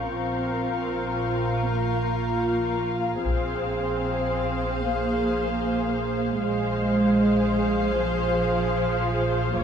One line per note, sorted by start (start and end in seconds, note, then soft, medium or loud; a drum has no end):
0.00 2.82 C#6 soft
0.00 2.81 G6 soft
0.09 3.21 A#1 soft
0.09 1.64 C4 soft
0.09 3.21 F4 soft
0.09 3.22 F4 soft
0.09 3.21 A#4 soft
0.09 3.22 A#4 soft
0.09 3.21 F5 soft
0.09 3.22 F5 soft
1.67 3.25 A#3 soft
3.24 6.37 A#1 soft
3.24 4.80 C4 soft
3.24 6.37 G#4 soft
3.24 6.39 G#4 soft
3.24 6.37 C5 soft
3.24 6.39 C5 soft
3.24 6.37 F5 soft
3.24 taiko soft
4.83 6.41 A#3 soft
6.40 9.53 A#1 soft
6.40 7.96 G#3 medium
6.40 9.52 G#4 soft
6.40 9.52 G#4 medium
6.40 9.53 C5 soft
6.40 9.52 F5 soft
6.40 9.53 F5 soft
7.99 9.57 F3 medium
9.55 9.64 A#1 soft
9.55 9.64 A#3 soft
9.55 9.64 F4 medium
9.55 9.64 C#5 soft
9.55 9.64 F5 soft
9.55 9.64 A#5 soft
9.55 taiko soft